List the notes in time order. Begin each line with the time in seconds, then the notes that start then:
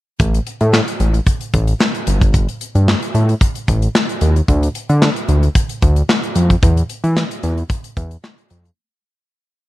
0.20 A1, kick, closed hi-hat
0.34 closed hi-hat
0.47 closed hi-hat
0.61 A2, closed hi-hat
0.73 snare, clap
0.88 closed hi-hat
1.00 A1, closed hi-hat
1.14 closed hi-hat
1.27 kick, closed hi-hat
1.41 closed hi-hat
1.54 A1, kick, closed hi-hat
1.67 closed hi-hat
1.80 snare, clap
1.95 closed hi-hat
2.07 G1, closed hi-hat
2.21 kick, closed hi-hat
2.34 kick, closed hi-hat
2.49 closed hi-hat
2.61 closed hi-hat
2.75 G2, closed hi-hat
2.88 snare, clap
3.02 closed hi-hat
3.15 A2, closed hi-hat
3.29 closed hi-hat
3.41 kick, closed hi-hat
3.55 closed hi-hat
3.68 A1, kick, closed hi-hat
3.82 closed hi-hat
3.95 snare, clap
4.09 closed hi-hat
4.21 D#2, closed hi-hat
4.36 closed hi-hat
4.48 D2, kick, closed hi-hat
4.63 closed hi-hat
4.75 closed hi-hat
4.89 D3, closed hi-hat
5.02 snare, clap
5.16 closed hi-hat
5.29 D2, closed hi-hat
5.43 closed hi-hat
5.55 kick, closed hi-hat
5.69 closed hi-hat
5.82 D2, kick, closed hi-hat
5.96 closed hi-hat
6.09 snare, clap
6.23 closed hi-hat
6.35 F2, closed hi-hat
6.50 kick, closed hi-hat
6.63 E2, kick, closed hi-hat
6.77 closed hi-hat
6.90 closed hi-hat
7.04 E3, closed hi-hat
7.17 snare, clap
7.31 closed hi-hat
7.43 E2, closed hi-hat
7.58 closed hi-hat
7.70 kick, closed hi-hat
7.84 closed hi-hat
7.97 E2, kick, closed hi-hat
8.11 closed hi-hat
8.24 snare, clap
8.38 closed hi-hat
8.50 F2, closed hi-hat
8.65 closed hi-hat